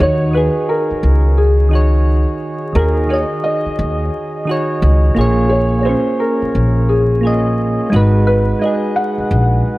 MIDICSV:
0, 0, Header, 1, 5, 480
1, 0, Start_track
1, 0, Key_signature, -6, "minor"
1, 0, Tempo, 689655
1, 1913, Time_signature, 4, 2, 24, 8
1, 6807, End_track
2, 0, Start_track
2, 0, Title_t, "Felt piano"
2, 0, Program_c, 0, 0
2, 1, Note_on_c, 0, 73, 93
2, 220, Note_off_c, 0, 73, 0
2, 239, Note_on_c, 0, 71, 73
2, 481, Note_on_c, 0, 70, 80
2, 483, Note_off_c, 0, 71, 0
2, 956, Note_on_c, 0, 68, 83
2, 971, Note_off_c, 0, 70, 0
2, 1919, Note_on_c, 0, 70, 90
2, 1943, Note_off_c, 0, 68, 0
2, 2157, Note_on_c, 0, 73, 87
2, 2163, Note_off_c, 0, 70, 0
2, 2211, Note_off_c, 0, 73, 0
2, 2392, Note_on_c, 0, 75, 85
2, 3565, Note_off_c, 0, 75, 0
2, 3823, Note_on_c, 0, 73, 85
2, 4018, Note_off_c, 0, 73, 0
2, 4029, Note_on_c, 0, 73, 58
2, 4069, Note_off_c, 0, 73, 0
2, 4073, Note_on_c, 0, 72, 78
2, 4313, Note_on_c, 0, 70, 79
2, 4320, Note_off_c, 0, 72, 0
2, 4795, Note_on_c, 0, 68, 81
2, 4807, Note_off_c, 0, 70, 0
2, 5726, Note_off_c, 0, 68, 0
2, 5755, Note_on_c, 0, 71, 94
2, 5977, Note_off_c, 0, 71, 0
2, 5997, Note_on_c, 0, 75, 81
2, 6218, Note_off_c, 0, 75, 0
2, 6235, Note_on_c, 0, 78, 87
2, 6807, Note_off_c, 0, 78, 0
2, 6807, End_track
3, 0, Start_track
3, 0, Title_t, "Synth keys"
3, 0, Program_c, 1, 88
3, 0, Control_c, 1, 64, 127
3, 0, Note_on_c, 1, 51, 69
3, 0, Note_on_c, 1, 63, 65
3, 2, Control_c, 1, 64, 0
3, 9, Note_on_c, 1, 66, 62
3, 21, Note_on_c, 1, 73, 73
3, 117, Control_c, 1, 64, 127
3, 159, Note_off_c, 1, 51, 0
3, 166, Note_off_c, 1, 63, 0
3, 173, Note_off_c, 1, 66, 0
3, 179, Note_off_c, 1, 73, 0
3, 216, Note_on_c, 1, 51, 59
3, 232, Note_on_c, 1, 63, 56
3, 246, Note_on_c, 1, 66, 58
3, 259, Note_on_c, 1, 68, 69
3, 850, Note_off_c, 1, 51, 0
3, 858, Note_off_c, 1, 63, 0
3, 865, Note_off_c, 1, 66, 0
3, 872, Note_off_c, 1, 68, 0
3, 1176, Note_on_c, 1, 51, 69
3, 1191, Note_on_c, 1, 63, 60
3, 1205, Note_on_c, 1, 66, 64
3, 1220, Note_on_c, 1, 73, 76
3, 1640, Note_off_c, 1, 51, 0
3, 1647, Note_off_c, 1, 63, 0
3, 1655, Note_off_c, 1, 66, 0
3, 1662, Note_off_c, 1, 73, 0
3, 1898, Note_on_c, 1, 51, 68
3, 1915, Note_on_c, 1, 63, 66
3, 1928, Note_on_c, 1, 66, 64
3, 1941, Note_on_c, 1, 68, 78
3, 2078, Note_off_c, 1, 51, 0
3, 2086, Note_off_c, 1, 63, 0
3, 2093, Note_off_c, 1, 66, 0
3, 2099, Note_off_c, 1, 68, 0
3, 2138, Note_on_c, 1, 51, 64
3, 2152, Note_on_c, 1, 63, 58
3, 2165, Note_on_c, 1, 66, 56
3, 2182, Note_on_c, 1, 75, 68
3, 2771, Note_off_c, 1, 51, 0
3, 2778, Note_off_c, 1, 63, 0
3, 2785, Note_off_c, 1, 66, 0
3, 2793, Note_off_c, 1, 75, 0
3, 3099, Note_on_c, 1, 51, 76
3, 3113, Note_on_c, 1, 63, 77
3, 3127, Note_on_c, 1, 66, 77
3, 3140, Note_on_c, 1, 73, 88
3, 3561, Note_off_c, 1, 51, 0
3, 3569, Note_off_c, 1, 63, 0
3, 3575, Note_off_c, 1, 66, 0
3, 3581, Note_on_c, 1, 58, 88
3, 3582, Note_off_c, 1, 73, 0
3, 3593, Note_on_c, 1, 65, 81
3, 3601, Control_c, 1, 64, 0
3, 3609, Note_on_c, 1, 68, 82
3, 3625, Note_on_c, 1, 73, 99
3, 3739, Control_c, 1, 64, 127
3, 3995, Note_off_c, 1, 58, 0
3, 4001, Note_off_c, 1, 65, 0
3, 4009, Note_off_c, 1, 68, 0
3, 4017, Note_off_c, 1, 73, 0
3, 4058, Note_on_c, 1, 58, 62
3, 4071, Note_on_c, 1, 65, 60
3, 4086, Note_on_c, 1, 68, 59
3, 4100, Note_on_c, 1, 61, 71
3, 4691, Note_off_c, 1, 58, 0
3, 4698, Note_off_c, 1, 65, 0
3, 4706, Note_off_c, 1, 68, 0
3, 4712, Note_off_c, 1, 61, 0
3, 5017, Note_on_c, 1, 58, 70
3, 5033, Note_on_c, 1, 65, 61
3, 5046, Note_on_c, 1, 68, 60
3, 5059, Note_on_c, 1, 75, 75
3, 5481, Note_off_c, 1, 58, 0
3, 5489, Note_off_c, 1, 65, 0
3, 5495, Note_off_c, 1, 68, 0
3, 5498, Note_on_c, 1, 56, 92
3, 5501, Note_off_c, 1, 75, 0
3, 5512, Note_on_c, 1, 63, 78
3, 5523, Control_c, 1, 64, 0
3, 5527, Note_on_c, 1, 66, 85
3, 5541, Note_on_c, 1, 71, 96
3, 5628, Control_c, 1, 64, 127
3, 5913, Note_off_c, 1, 56, 0
3, 5921, Note_off_c, 1, 63, 0
3, 5928, Note_off_c, 1, 66, 0
3, 5935, Note_off_c, 1, 71, 0
3, 5981, Note_on_c, 1, 56, 66
3, 5993, Note_on_c, 1, 63, 60
3, 6010, Note_on_c, 1, 66, 58
3, 6023, Note_on_c, 1, 68, 69
3, 6613, Note_off_c, 1, 56, 0
3, 6619, Note_off_c, 1, 63, 0
3, 6627, Note_off_c, 1, 66, 0
3, 6634, Note_off_c, 1, 68, 0
3, 6807, End_track
4, 0, Start_track
4, 0, Title_t, "Upright bass"
4, 0, Program_c, 2, 32
4, 0, Note_on_c, 2, 39, 97
4, 326, Note_off_c, 2, 39, 0
4, 717, Note_on_c, 2, 37, 85
4, 1557, Note_off_c, 2, 37, 0
4, 1915, Note_on_c, 2, 39, 106
4, 2244, Note_off_c, 2, 39, 0
4, 2636, Note_on_c, 2, 39, 89
4, 2838, Note_off_c, 2, 39, 0
4, 3356, Note_on_c, 2, 37, 94
4, 3558, Note_off_c, 2, 37, 0
4, 3594, Note_on_c, 2, 34, 89
4, 4127, Note_off_c, 2, 34, 0
4, 4558, Note_on_c, 2, 34, 80
4, 5398, Note_off_c, 2, 34, 0
4, 5517, Note_on_c, 2, 32, 90
4, 5921, Note_off_c, 2, 32, 0
4, 6478, Note_on_c, 2, 34, 92
4, 6679, Note_off_c, 2, 34, 0
4, 6807, End_track
5, 0, Start_track
5, 0, Title_t, "Muted upright bass strokes"
5, 631, Note_on_c, 9, 29, 42
5, 700, Note_off_c, 9, 29, 0
5, 2546, Note_on_c, 9, 29, 43
5, 2615, Note_off_c, 9, 29, 0
5, 4468, Note_on_c, 9, 29, 44
5, 4538, Note_off_c, 9, 29, 0
5, 6390, Note_on_c, 9, 29, 45
5, 6459, Note_off_c, 9, 29, 0
5, 6807, End_track
0, 0, End_of_file